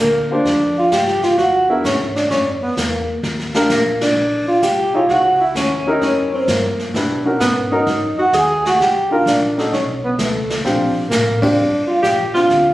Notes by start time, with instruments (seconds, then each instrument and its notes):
Already playing: upright piano D4 F4 G4 C5
0.00 upright bass D2, alto saxophone A#3, vibraphone A#4
0.31 upright piano D4 F4 G4 C5, alto saxophone D4, vibraphone D5
0.45 upright bass F2, brush sweep, kick, snare
0.78 alto saxophone F4, vibraphone F5
0.91 upright bass G2, alto saxophone G4, vibraphone G5, kick, snare, hi-hat pedal
1.07 snare
1.23 alto saxophone F4, vibraphone F5, muted upright bass stroke, snare
1.37 upright bass E2, alto saxophone F#4, vibraphone F#5, brush sweep, kick, snare
1.69 upright piano B3 D4 G#4 A#4, alto saxophone E4, vibraphone E5
1.84 upright bass G#2, alto saxophone C#4, vibraphone C#5, kick, snare, hi-hat pedal
2.15 alto saxophone D4, vibraphone D5, snare
2.30 upright bass F#2, alto saxophone C#4, vibraphone C#5, brush sweep, kick, snare
2.62 alto saxophone B3, vibraphone B4
2.77 upright bass E2, alto saxophone A#3, vibraphone A#4, kick, snare, hi-hat pedal
3.23 upright bass D#2, brush sweep, kick, snare
3.39 snare
3.54 upright piano D4 F4 G4 A#4, snare
3.70 upright bass A#1, alto saxophone A#3, vibraphone A#4, kick, snare, hi-hat pedal
4.01 alto saxophone D4, vibraphone D5, snare, ride
4.15 upright bass A#1, brush sweep
4.48 alto saxophone F4, vibraphone F5
4.62 upright bass C2, alto saxophone G4, vibraphone G5, kick, snare, hi-hat pedal
4.94 upright piano D#4 E4 G#4 C#5, alto saxophone F4, vibraphone F5
5.09 upright bass C#2, alto saxophone F#4, vibraphone F#5, brush sweep, kick, snare
5.41 alto saxophone E4, vibraphone E5
5.55 upright bass D#2, alto saxophone C#4, vibraphone C#5, kick, snare, hi-hat pedal
5.87 upright piano C#4 E4 G4 A#4, alto saxophone D#4
5.91 vibraphone D#5
6.01 upright bass F#2, alto saxophone C#4, brush sweep, kick, snare
6.06 vibraphone C#5
6.34 alto saxophone C4
6.38 vibraphone C5
6.48 upright bass G2, alto saxophone A#3, kick, snare, hi-hat pedal
6.52 vibraphone A#4
6.79 snare
6.94 upright bass B2, upright piano D4 E4 G4 B4, brush sweep, kick, snare
7.25 upright piano C#4 D#4 F#4 A#4
7.40 upright bass G#2, alto saxophone B3, vibraphone B4, kick, snare, hi-hat pedal
7.71 upright piano C#4 D#4 F#4 A#4, alto saxophone D#4, vibraphone D#5
7.86 upright bass F#2, brush sweep, kick, snare
8.19 alto saxophone F#4, vibraphone F#5
8.33 upright bass D#2, alto saxophone G#4, kick, snare, hi-hat pedal
8.37 vibraphone G#5
8.65 alto saxophone F#4, vibraphone F#5, snare
8.80 upright bass C2, alto saxophone G4, vibraphone G5, brush sweep, kick, snare
9.11 upright piano D4 D#4 F4 A#4, alto saxophone F4, vibraphone F5
9.26 upright bass A#1, alto saxophone D4, vibraphone D5, kick, snare, hi-hat pedal
9.58 upright piano C#4 D#4 F#4 A4, alto saxophone D#4, vibraphone D#5, snare
9.72 upright bass B1, alto saxophone C#4, vibraphone C#5, brush sweep, kick, snare
10.04 alto saxophone B3, vibraphone B4
10.18 upright bass C#2, alto saxophone A3, vibraphone A4, kick, snare, hi-hat pedal
10.50 snare
10.64 upright bass A#1, upright piano C4 D4 F4 G4, brush sweep, kick, snare
11.10 upright bass A1, alto saxophone A#3, vibraphone A#4, kick, snare, hi-hat pedal
11.41 upright piano C4 D4 F4 G4, alto saxophone D4, vibraphone D5, kick, ride
11.56 upright bass G1, brush sweep
11.87 alto saxophone F4, vibraphone F5
12.03 upright bass A#1, alto saxophone G4, vibraphone G5, kick, snare, hi-hat pedal
12.34 upright piano C4 D4 F4 G4, alto saxophone F4, vibraphone F5, muted upright bass stroke, snare
12.49 upright bass D2, brush sweep, kick, snare